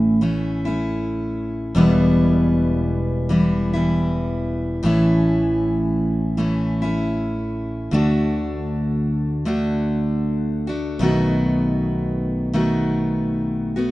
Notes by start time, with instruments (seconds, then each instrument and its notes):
Already playing: fingered electric bass A1, steel-string acoustic guitar A2 E3 A3 C#4 E4
0.21 steel-string acoustic guitar E3 A3 C#4 E4
0.65 steel-string acoustic guitar A3 C#4 E4
1.75 fingered electric bass E1, steel-string acoustic guitar E2 B2 E3 G3 B3 E4
3.29 steel-string acoustic guitar E3 G3 B3 E4
3.73 steel-string acoustic guitar E3 G3 B3 E4
4.83 fingered electric bass A1, steel-string acoustic guitar A2 E3 A3 C#4 E4
6.37 steel-string acoustic guitar E3 A3 C#4 E4
6.82 steel-string acoustic guitar A3 C#4 E4
7.91 fingered electric bass D2, steel-string acoustic guitar D3 A3 D4 F#4
9.45 steel-string acoustic guitar D3 A3 D4 F#4
10.67 steel-string acoustic guitar A3 D4 F#4
10.99 fingered electric bass B1, steel-string acoustic guitar B2 D#3 A3 B3 F#4
12.53 steel-string acoustic guitar D#3 A3 B3 F#4
13.76 steel-string acoustic guitar A3 B3 F#4